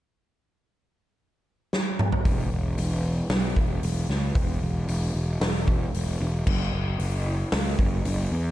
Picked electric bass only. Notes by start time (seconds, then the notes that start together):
2.25 E1
2.52 E1
2.78 E1
3.30 B1
3.57 E1
3.83 E1
4.09 C#2
4.35 E1
4.62 E1
4.88 E1
5.15 E1
5.41 E1
5.95 E1
6.21 E1
6.47 F#1
6.74 F#1
7.00 F#1
7.53 C#2
7.79 F#1
8.05 F#1
8.31 E2